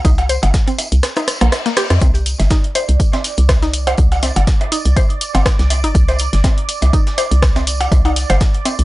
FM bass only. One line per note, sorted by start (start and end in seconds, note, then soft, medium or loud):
0.05 0.38 C2 loud
0.43 0.51 G1 loud
0.92 1.00 C2 medium
1.41 1.50 A#1 loud
1.90 1.99 F2 loud
2.01 2.34 C2 loud
2.40 2.48 G1 loud
2.89 2.97 C2 medium
3.38 3.94 C2 medium
3.98 4.31 C2 loud
4.36 4.45 G1 loud
4.86 4.94 C2 medium
5.35 5.43 G1 medium
5.59 5.85 C2 medium
5.84 5.92 G1 medium
5.95 6.28 C2 loud
6.33 6.41 G1 loud
6.82 6.91 C2 medium
7.31 7.87 C2 medium
7.92 8.25 C2 loud
8.30 8.38 G1 loud
8.79 8.84 C2 medium